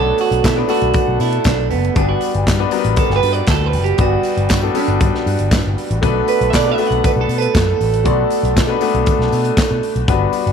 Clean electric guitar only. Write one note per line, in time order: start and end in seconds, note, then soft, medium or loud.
0.00 0.20 A4 loud
0.21 0.44 F#4 medium
0.45 0.58 E4 medium
0.58 0.70 D4 loud
0.70 1.21 F#4 medium
1.21 1.47 E4 medium
1.46 1.70 D4 medium
1.71 1.96 B3 medium
1.97 2.08 D4 medium
2.09 2.33 F#4 medium
2.99 3.16 A4 medium
3.16 3.33 B4 loud
3.33 3.50 D5 loud
3.50 3.66 A4 medium
3.66 3.84 B4 medium
3.84 4.01 G4 medium
4.01 4.79 F#4 medium
4.77 5.99 D4 medium
6.28 6.50 B4 medium
6.50 6.54 E5 medium
6.55 6.72 D5 loud
6.72 6.87 E5 loud
6.87 7.05 F#5 medium
7.05 7.10 B4 medium
7.21 7.38 A4 loud
7.38 7.54 B4 medium
7.54 7.73 A4 loud
7.73 8.99 F#4 medium